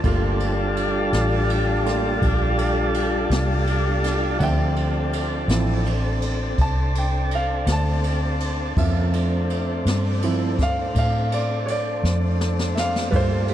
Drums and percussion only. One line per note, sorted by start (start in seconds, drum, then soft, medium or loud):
0.04 kick loud
0.04 ride medium
0.40 ride medium
0.77 ride medium
1.13 snare medium
1.13 ride medium
1.50 ride medium
1.86 snare soft
1.86 ride medium
2.22 kick medium
2.22 ride medium
2.58 ride medium
2.94 ride medium
3.31 snare loud
3.31 ride medium
3.67 ride medium
4.04 snare soft
4.04 ride medium
4.40 kick loud
4.40 ride medium
4.76 ride soft
5.13 ride medium
5.49 snare medium
5.49 ride medium
5.86 ride medium
6.22 ride medium
6.58 kick medium
6.58 ride medium
6.95 ride medium
7.31 ride medium
7.67 snare medium
7.67 ride medium
8.04 ride medium
8.40 ride medium
8.77 kick loud
8.77 ride medium
9.13 ride medium
9.50 ride medium
9.86 snare loud
9.86 ride medium
10.22 ride medium
10.59 kick medium
10.59 snare soft
10.59 ride medium
10.95 kick medium
10.95 ride medium
11.32 ride medium
11.68 ride medium
12.05 snare medium
12.41 snare medium
12.59 snare medium
12.77 snare medium
12.96 snare medium
13.13 kick loud
13.13 ride medium
13.48 ride soft